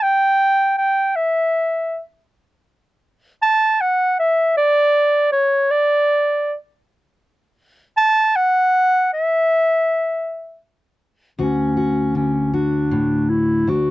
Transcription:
0.02 clarinet G5
0.77 clarinet G5
1.16 clarinet E5
3.43 clarinet A5
3.81 clarinet F#5
4.19 clarinet E5
4.57 clarinet D5
5.32 clarinet C#5
5.71 clarinet D5
7.98 clarinet A5
8.36 clarinet F#5
9.13 clarinet E5
11.39 steel-string acoustic guitar D2 F#4, clarinet C#4
11.77 steel-string acoustic guitar F#4
12.15 steel-string acoustic guitar D3, clarinet C#4
12.54 clarinet D4, steel-string acoustic guitar F#4
12.91 steel-string acoustic guitar A2
13.30 clarinet E4
13.67 steel-string acoustic guitar D2 D4, clarinet F#4

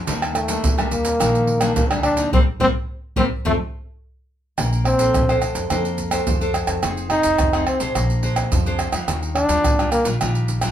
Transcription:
0.07 upright bass D#2, nylon-string guitar D#3 G3 A#3 D4, pandeiro, maracas, surdo
0.22 pandeiro, tamborim, maracas
0.34 trombone A3, pandeiro, tamborim, maracas
0.48 nylon-string guitar G3 A#3 D4, pandeiro, maracas
0.64 upright bass D#2, nylon-string guitar A#2, pandeiro, maracas, surdo
0.78 nylon-string guitar G3 A#3 D4, pandeiro, tamborim, maracas
0.91 upright bass D#2, trombone A#3, pandeiro, maracas
1.05 pandeiro, maracas
1.20 upright bass A#1, nylon-string guitar D#3 G3 A#3 D4, pandeiro, tamborim, maracas, surdo
1.35 pandeiro, maracas
1.47 pandeiro
1.61 nylon-string guitar G3 A#3 D4, pandeiro, tamborim, maracas
1.75 upright bass D2, nylon-string guitar A#2, trombone A#3, pandeiro, maracas, surdo
1.90 nylon-string guitar G3 A#3 D4, trombone D4, pandeiro, tamborim, maracas
2.03 trombone D4, pandeiro, tamborim
2.17 nylon-string guitar G3 A#3 D#4, pandeiro, maracas
2.32 upright bass C2, nylon-string guitar G3 A#3 C4, trombone C4, surdo
2.60 upright bass C2, nylon-string guitar G3 A#3 C4, trombone C4, surdo
3.16 upright bass C2, nylon-string guitar G3 A#3 C4, trombone C4, surdo
3.45 upright bass F2, nylon-string guitar F3 A3 C4, trombone A3, surdo
4.58 upright bass A#1, nylon-string guitar A#3, pandeiro, tamborim, maracas, surdo
4.73 pandeiro, maracas
4.85 trombone C4, pandeiro, tamborim
4.98 upright bass A#1, nylon-string guitar D4 A4 C5, pandeiro, maracas, surdo
5.14 upright bass A#1, nylon-string guitar F3, pandeiro, tamborim, maracas, surdo
5.29 nylon-string guitar D4 A4 C5, pandeiro, tamborim, maracas
5.42 trombone A3, pandeiro, tamborim, maracas
5.55 upright bass F2, pandeiro, maracas, surdo
5.70 upright bass F2, nylon-string guitar A#3 D4 A4 C5, pandeiro, tamborim, maracas, surdo
5.85 pandeiro, maracas
5.98 pandeiro, maracas, surdo
6.11 nylon-string guitar D4 A4 C5, pandeiro, tamborim, maracas, surdo
6.27 upright bass F2, nylon-string guitar F3, pandeiro, maracas, surdo
6.41 nylon-string guitar D4 A4 C5, pandeiro, maracas
6.54 pandeiro, tamborim, maracas
6.67 upright bass F2, pandeiro, tamborim, maracas, surdo
6.83 upright bass F1, nylon-string guitar F3 C4 D#4 G#4, pandeiro, tamborim, maracas, surdo
6.97 pandeiro, maracas
7.10 nylon-string guitar C4 D#4 G#4, trombone D#4, pandeiro, tamborim
7.23 upright bass F1, pandeiro, maracas, surdo
7.38 upright bass F1, nylon-string guitar C3, pandeiro, tamborim, maracas, surdo
7.53 nylon-string guitar C4 D#4 G#4, pandeiro, tamborim, maracas
7.67 trombone C4, pandeiro, tamborim
7.80 upright bass C2, nylon-string guitar D4 G#4 C5, pandeiro, maracas, surdo
7.95 upright bass A#1, nylon-string guitar A#3, pandeiro, tamborim, maracas, surdo
8.10 pandeiro, maracas
8.23 nylon-string guitar D4 G#4 C5, pandeiro, surdo
8.36 pandeiro, tamborim, maracas, surdo
8.52 upright bass F2, nylon-string guitar F3, pandeiro, maracas, surdo
8.66 nylon-string guitar D4 G#4 C5, pandeiro, maracas
8.79 pandeiro, tamborim, maracas
8.93 upright bass F2, nylon-string guitar G3 D4 F4, pandeiro, tamborim, maracas, surdo
9.08 upright bass D#2, nylon-string guitar D#3, pandeiro, tamborim, maracas, surdo
9.23 pandeiro, maracas
9.35 trombone D4, pandeiro, tamborim
9.49 upright bass D#2, nylon-string guitar G3 D4 F4, pandeiro, maracas, surdo
9.64 upright bass D#2, nylon-string guitar A#2, pandeiro, tamborim, maracas, surdo
9.79 nylon-string guitar G3 D4 F4, pandeiro, tamborim, maracas
9.92 trombone A#3, pandeiro, tamborim, maracas
10.05 upright bass A#1, nylon-string guitar G3 D4 F4, pandeiro, maracas, surdo
10.21 upright bass A#1, nylon-string guitar D#3 G3 D4 F4, pandeiro, tamborim, maracas, surdo
10.35 pandeiro, maracas
10.48 pandeiro, maracas
10.61 nylon-string guitar G3 D4 F4, pandeiro, tamborim, maracas, surdo

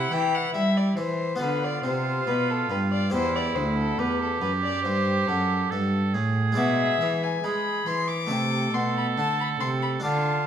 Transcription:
Already playing: cello C3, harpsichord C4 E4 G4, oboe E4, violin F#5
0.12 harpsichord E3, cello E3, violin G5
0.35 violin F#5
0.55 harpsichord G3, cello G3, violin E5
0.77 violin D5
0.97 harpsichord E3, cello E3, violin C5
1.36 harpsichord B3 F4
1.40 harpsichord D3, cello D3, oboe F4, violin B4
1.64 violin D5
1.84 harpsichord C3, cello C3, violin C5
2.27 harpsichord B2, cello B2, violin B4
2.50 violin A4
2.70 harpsichord G2, cello G2, violin B4
2.92 violin D5
3.10 harpsichord E2 E4 G4, oboe E4, violin C5
3.14 cello E2
3.35 violin D5
3.55 harpsichord D2, cello D2, violin C5
3.78 violin A4
3.99 harpsichord E2, cello E2, oboe G4, violin B4
4.22 violin A4
4.41 harpsichord F#2, cello F#2, violin B4
4.64 violin D5
4.84 harpsichord G2, cello G2, violin C5
5.27 harpsichord F#2, cello F#2, violin A4
5.71 cello G2, harpsichord G2, oboe A4
6.14 cello A2, harpsichord A2, oboe G#4
6.52 harpsichord G#3 E4 D5, violin E5
6.57 harpsichord B2, cello B2
7.01 cello E3, harpsichord E3
7.23 violin G#5
7.44 cello G#3, harpsichord G#3, oboe G#4, violin B5
7.86 harpsichord E3, cello E3, violin C6
8.08 violin D6
8.27 cello C3, harpsichord A3 E4 E5
8.31 harpsichord C3, oboe A4
8.73 cello B2, harpsichord B2, violin C6
8.97 violin B5
9.17 cello D3, harpsichord D3, violin A5
9.40 violin B5
9.60 cello C3, harpsichord C3, violin C6
9.82 violin B5
10.00 cello D3, harpsichord D4 F4 D5, oboe F4, violin A5
10.04 harpsichord D3

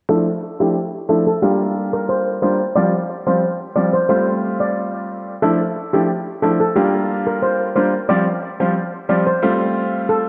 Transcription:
0.09 grand piano F3 A3 D4 E4, steel pan A4
0.60 grand piano F3 A3 D4 E4, steel pan G4
1.09 grand piano F3 A3 D4 E4, steel pan A4
1.27 steel pan A4
1.42 grand piano G3 A#3 D4 F4, steel pan G4
1.93 steel pan A#4
2.09 steel pan C5
2.42 grand piano G3 A#3 D4 F4, steel pan C5
2.76 grand piano F3 G3 C4 F4, steel pan D5
3.27 grand piano F3 G3 C4 F4, steel pan C5
3.76 grand piano F3 G3 C4 F4, steel pan D5
3.93 steel pan C5
4.09 grand piano G3 A3 C4 F4, steel pan C5
4.60 steel pan D5
5.42 grand piano F3 A3 D4 E4, steel pan A4
5.93 grand piano F3 A3 D4 E4, steel pan G4
6.42 grand piano F3 A3 D4 E4, steel pan A4
6.60 steel pan A4
6.76 grand piano G3 A#3 D4 F4, steel pan G4
7.27 steel pan A#4
7.42 steel pan C5
7.76 grand piano G3 A#3 D4 F4, steel pan C5
8.09 grand piano F3 G3 C4 F4, steel pan D5
8.60 grand piano F3 G3 C4 F4, steel pan C5
9.09 grand piano F3 G3 C4 F4, steel pan D5
9.27 steel pan C5
9.42 grand piano G3 A3 C4 F4
10.09 steel pan A4

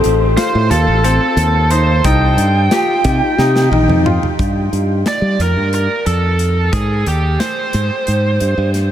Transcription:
Already playing: trombone A4
0.04 fingered electric bass A1, closed hi-hat
0.37 grand piano F4, lead electric guitar C5, snare, closed hi-hat
0.55 fingered electric bass A2
0.71 fingered electric bass D#2, grand piano F4, lead electric guitar A4, closed hi-hat
0.88 fingered electric bass A1
1.04 grand piano C4, lead electric guitar A4, closed hi-hat
1.37 fingered electric bass D#2, closed hi-hat
1.71 grand piano D#4, lead electric guitar C5, closed hi-hat
2.04 fingered electric bass C2, grand piano D#4, lead electric guitar G5, kick, closed hi-hat
2.37 fingered electric bass G2, closed hi-hat
2.71 trombone F4, grand piano G4, snare, closed hi-hat
3.04 fingered electric bass C3, trombone D#4, grand piano G4, kick, closed hi-hat
3.37 fingered electric bass C3, grand piano D#4, trombone G4, snare
3.56 snare
3.70 fingered electric bass A#1, trombone D#4, high tom
3.88 fingered electric bass F2, mid tom
4.06 grand piano F4, mid tom
4.23 floor tom
4.39 fingered electric bass G2, kick, closed hi-hat
4.73 fingered electric bass G2, closed hi-hat
5.06 lead electric guitar D5, snare, closed hi-hat
5.22 fingered electric bass G3
5.39 fingered electric bass F2, lead electric guitar A#4, snare, closed hi-hat
5.56 fingered electric bass G2
5.73 lead electric guitar A#4, closed hi-hat
6.06 fingered electric bass F2, lead electric guitar A4, closed hi-hat
6.39 closed hi-hat
6.73 fingered electric bass G#2, lead electric guitar G#4, kick, closed hi-hat
7.06 fingered electric bass D#2, lead electric guitar G4, closed hi-hat
7.40 lead electric guitar C5, snare, closed hi-hat
7.73 fingered electric bass G#2, closed hi-hat
8.07 fingered electric bass G#2, closed hi-hat
8.40 fingered electric bass G2, closed hi-hat
8.58 fingered electric bass G2
8.74 snare, closed hi-hat

